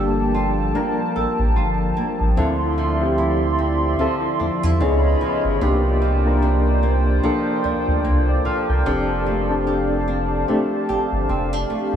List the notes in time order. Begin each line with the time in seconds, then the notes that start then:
Already playing: G1 F3 G3 A#3 D4 F4 G4 A4 G5 A5
0.35 F4
0.74 A#3 D4 F4 A#4
1.16 A1 A4
1.39 A1
1.56 G1 F4
1.97 A#3
2.21 A1
2.37 D2 D3 C4 E4 F4 A4 D5 E5 C6
2.78 F3
3.01 C4 E4 F4 G4
3.18 E4
3.59 C4
3.99 F3 C4 E4 F4 A4
4.40 E2 D4
4.63 E2 E4
4.80 C#2 C#3 B3 D#4 F4 G#4 C#5 D#5 B5
5.21 F3
5.45 G1
5.61 C2 C3 A#3 D4 F4 G4 C5 D5 G5
6.02 F3
6.25 A#3 D4 F4 A#4
6.42 D4
6.83 A#3
7.23 F3 A#3 D4 F4 A4
7.64 D2 D4
7.88 D2
8.05 C2 A#3
8.29 F4 D5
8.45 F3 A4 F5
8.69 C2 A#4 G5
8.86 F1 F3 C4 D4 G4 A4 F5 A5
9.26 A3
9.50 C4 D4 G4 A4
9.67 G4
10.08 D4
10.48 A3 C4 D4 G4 A4
10.89 G1 G4
11.13 G1
11.29 F1 C4
11.53 D4
11.70 A3